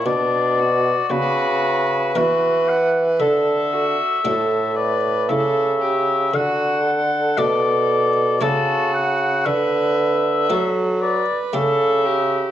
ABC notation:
X:1
M:3/4
L:1/16
Q:1/4=58
K:D
V:1 name="Oboe"
d4 B4 F2 f2 | e6 d2 e4 | f4 d4 A2 f2 | e6 d2 e4 |]
V:2 name="Violin"
D2 F6 B4 | A2 F2 A2 B2 A2 G2 | F2 A6 F4 | B4 A2 B2 A2 G2 |]
V:3 name="Harpsichord"
z4 [B,DF]4 [B,DF]4 | z4 [A,DF]4 [A,EA]4 | z4 [A,DA]4 [A,DA]4 | z4 [A,FA]4 [A,GA]4 |]
V:4 name="Harpsichord" clef=bass
B,,4 C,4 E,4 | D,3 z A,,4 C,4 | D,4 B,,4 C,4 | D,4 F,3 z C,4 |]
V:5 name="Bassoon" clef=bass
B,,4 C,4 E,4 | D,3 z A,,4 C,4 | D,4 B,,4 C,4 | D,4 F,3 z C,4 |]